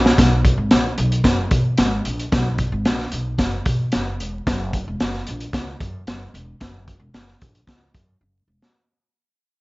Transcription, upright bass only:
0.00 0.11 A#1 loud
0.18 0.48 B1 loud
0.58 0.68 G#1 medium
0.72 0.91 A#1 medium
0.98 1.18 B1 loud
1.24 1.44 F#1 loud
1.51 1.71 B2 medium
1.79 1.98 G#1 loud
2.05 2.25 A#1 medium
2.32 2.62 B1 loud
2.72 2.82 G#1 medium
2.85 3.05 A#1 medium
3.13 3.33 B1 medium
3.38 3.58 F#1 medium
3.65 3.85 B2 medium
3.94 4.20 F#1 medium
4.20 4.40 E1 medium
4.47 4.76 F#1 loud
4.88 4.97 E1 medium
5.01 5.21 F#1 medium
5.29 5.48 A#1 medium
5.53 5.73 C#2 loud
5.80 6.00 F#2 medium
6.07 6.27 F#1 loud
6.34 6.54 E1 medium
6.60 6.90 F#1 loud
7.00 7.10 E1 medium
7.14 7.34 F#1 medium
7.41 7.61 A#1 medium
7.67 7.87 C#2 medium
7.94 8.14 F#2 medium
8.21 8.41 F#1 medium
8.48 8.58 E1 medium

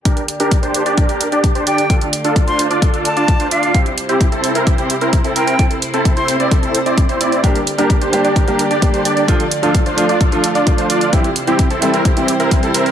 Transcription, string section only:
0.05 3.71 D3 medium
0.05 1.88 A#3 medium
0.05 1.88 G4 medium
0.05 1.88 D5 medium
1.90 3.73 A3 medium
1.90 3.73 F4 medium
1.90 3.73 D5 medium
3.74 5.57 C3 medium
3.74 5.57 G3 medium
3.74 7.40 E4 medium
3.74 5.57 C5 medium
5.59 7.42 C3 medium
5.59 7.42 A3 medium
5.59 7.42 C5 medium
7.44 11.09 D3 medium
7.44 9.26 A#3 medium
7.44 9.26 G4 medium
7.44 11.09 D5 medium
9.28 11.11 A3 medium
9.28 11.11 F4 medium
11.13 12.91 C3 medium
11.13 12.91 G3 medium
11.13 12.91 E4 medium
11.13 12.91 C5 medium

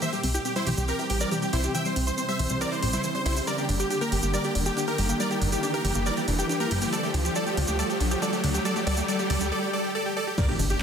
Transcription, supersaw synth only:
0.02 0.10 C5 medium
0.02 0.10 E5 loud
0.13 0.20 G4 medium
0.34 0.42 G4 medium
0.45 0.53 G4 medium
0.56 0.64 E4 medium
0.56 0.63 C5 medium
0.67 0.74 G4 medium
0.78 0.85 G4 medium
0.88 0.96 G4 medium
0.88 0.96 A#4 medium
0.99 1.07 G4 medium
1.10 1.17 G4 medium
1.21 1.28 A#4 medium
1.21 1.28 D5 medium
1.32 1.39 G4 medium
1.42 1.50 G4 medium
1.53 1.61 E4 medium
1.53 1.61 C5 medium
1.64 1.71 G4 medium
1.75 1.82 E5 medium
1.75 1.82 G5 loud
1.86 1.93 C5 medium
2.07 2.15 C5 medium
2.18 2.25 C5 medium
2.29 2.36 C5 medium
2.29 2.36 E5 medium
2.39 2.47 C5 medium
2.50 2.58 C5 medium
2.61 2.68 A#4 medium
2.61 2.68 D5 loud
2.72 2.79 C5 medium
2.83 2.90 C5 medium
2.93 3.01 E4 medium
2.93 3.01 C5 medium
3.04 3.12 C5 medium
3.15 3.22 C5 medium
3.26 3.33 E4 medium
3.26 3.33 C5 medium
3.37 3.44 C5 medium
3.47 3.55 A#4 medium
3.47 3.55 D5 medium
3.58 3.66 G4 medium
3.80 3.87 G4 medium
3.90 3.98 G4 medium
4.01 4.09 G4 medium
4.01 4.09 A#4 medium
4.12 4.20 G4 medium
4.23 4.30 G4 medium
4.34 4.41 A#4 medium
4.34 4.41 D5 medium
4.44 4.52 G4 medium
4.66 4.74 G4 medium
4.77 4.84 G4 medium
4.88 4.95 G4 medium
4.88 4.95 A#4 medium
4.98 5.06 G4 medium
5.09 5.17 G4 medium
5.20 5.28 A#4 medium
5.20 5.28 D5 medium
5.31 5.38 G4 medium
5.52 5.60 G4 medium
5.63 5.71 G4 medium
5.74 5.81 G4 medium
5.74 5.81 A#4 medium
5.85 5.92 G4 medium
5.96 6.03 G4 medium
6.06 6.14 A#4 medium
6.06 6.14 D5 medium
6.17 6.25 G4 medium
6.39 6.46 G4 medium
6.50 6.57 G4 medium
6.60 6.68 G4 medium
6.60 6.68 A#4 medium
6.71 6.79 G4 medium
6.82 6.89 G4 medium
6.93 7.00 A4 medium
6.93 7.00 D5 loud
7.03 7.11 G4 medium
7.25 7.33 G4 medium
7.36 7.43 A4 medium
7.36 7.43 D5 loud
7.47 7.54 G4 medium
7.68 7.76 G4 medium
7.79 7.86 A4 medium
7.79 7.86 D5 loud
7.90 7.97 G4 medium
8.11 8.19 G4 medium
8.22 8.30 A4 medium
8.22 8.30 D5 loud
8.33 8.40 G4 medium
8.54 8.62 G4 medium
8.65 8.73 A4 medium
8.65 8.73 D5 loud
8.76 8.84 G4 medium
8.87 8.94 A4 medium
8.87 8.94 D5 loud
8.98 9.05 G4 medium
9.09 9.16 A4 medium
9.09 9.16 D5 loud
9.19 9.27 G4 medium
9.30 9.38 A4 medium
9.30 9.38 D5 loud
9.41 9.48 G4 medium
9.52 9.59 A4 medium
9.52 9.59 D5 loud
9.62 9.70 G4 medium
9.73 9.81 A4 medium
9.73 9.81 D5 loud
9.84 9.92 G4 medium
9.95 10.02 A4 medium
9.95 10.02 D5 loud
10.06 10.13 G4 medium
10.17 10.24 A4 medium
10.17 10.24 D5 loud
10.27 10.35 G4 medium
10.38 10.46 A#4 medium
10.38 10.46 D5 loud
10.49 10.56 G4 medium
10.70 10.78 G4 medium

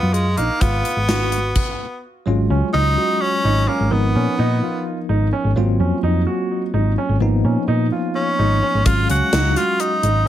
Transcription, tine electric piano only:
2.26 3.88 F#3 medium
2.26 3.88 G#3 medium
2.26 3.88 C#4 medium
2.26 3.89 F4 medium
3.90 5.53 F3 medium
3.90 5.53 B3 medium
3.90 5.54 D#4 medium
3.90 5.53 A#4 soft
5.56 7.18 F#3 medium
5.56 7.18 A#3 medium
5.56 7.18 C4 medium
5.56 7.19 F4 medium
7.20 8.82 F3 medium
7.20 8.82 A#3 medium
7.20 8.83 B3 medium
7.20 8.83 D#4 medium
8.85 10.28 F#3 medium
8.85 10.28 G#3 medium
8.85 10.28 C#4 medium
8.85 10.28 F5 medium

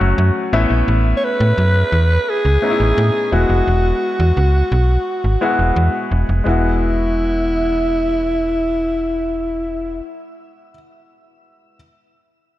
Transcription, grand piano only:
0.00 0.54 F#3 medium
0.00 0.53 A3 medium
0.00 0.54 C#4 medium
0.00 0.55 F#4 medium
0.53 1.64 A3 medium
0.53 1.64 B3 medium
0.53 1.65 C#4 medium
0.53 1.65 E4 medium
2.62 3.32 A3 medium
2.62 3.31 B3 medium
2.62 3.32 C#4 medium
2.62 2.69 D#4 medium
2.70 3.31 E4 medium
3.32 4.43 G#3 medium
3.32 4.44 B3 medium
3.32 4.44 E4 medium
3.32 4.44 F#4 medium
5.41 6.23 G#3 medium
5.41 6.23 B3 medium
5.41 6.24 E4 medium
5.41 6.24 F#4 medium
6.44 10.70 G#3 medium
6.44 10.71 B3 medium
6.44 10.71 E4 medium
6.49 10.72 F#4 medium

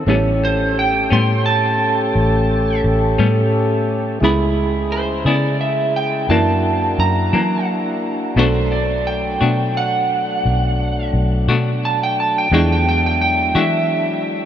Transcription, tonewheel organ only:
0.07 4.19 A3 medium
0.07 4.19 C#4 medium
0.07 4.19 G4 medium
0.07 4.18 A4 medium
4.20 6.27 C#3 medium
4.20 6.27 G#3 medium
4.20 6.27 E4 medium
4.20 6.27 G#4 medium
6.30 8.36 A#3 medium
6.30 8.36 D4 medium
6.30 8.36 E4 medium
6.30 8.36 F#4 medium
8.37 12.48 F#3 medium
8.37 12.49 A3 medium
8.37 12.48 D4 soft
12.51 12.87 F3 medium
12.51 12.86 F#3 medium
12.51 12.87 A3 medium
12.51 12.86 D4 medium
12.87 14.45 F#3 medium
12.87 14.45 G#3 medium
12.87 14.45 D4 medium
12.87 14.45 E4 medium

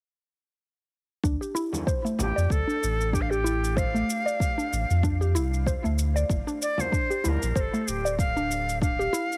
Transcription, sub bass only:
1.24 1.37 D2 medium
2.19 2.32 A1 medium
2.37 2.47 F2 loud
2.50 2.63 D2 medium
2.83 4.03 A1 medium
4.72 4.85 A1 medium
4.90 5.37 F2 medium
5.35 5.76 C2 medium
5.85 6.24 D2 medium
6.30 6.43 G1 medium
7.25 7.37 D2 medium
7.42 7.52 A#1 medium
7.56 7.69 G1 medium
7.88 9.08 D1 loud

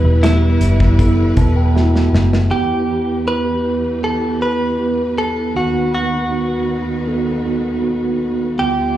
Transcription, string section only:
0.00 2.48 E3 medium
0.00 2.48 G3 medium
0.00 2.47 E4 medium
0.00 2.48 B4 medium
2.51 5.52 E2 medium
2.51 5.52 E3 medium
2.51 5.52 G4 medium
2.51 8.55 B4 medium
5.55 8.56 D#2 medium
5.55 8.56 D#3 medium
5.55 8.56 F#4 medium
8.59 8.97 D3 medium
8.59 8.97 G3 medium
8.59 8.97 B3 medium
8.59 8.97 F4 medium

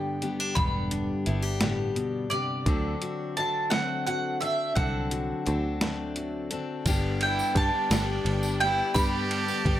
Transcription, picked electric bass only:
0.56 1.12 E1 medium
1.27 2.38 G1 medium
2.66 2.94 D2 medium
4.76 5.32 C2 medium
5.47 6.58 D2 medium
6.85 7.41 G1 medium
7.55 7.69 G2 medium
7.90 8.18 G1 medium
8.25 8.81 G1 medium
8.95 9.51 G2 medium
9.65 9.80 G1 medium

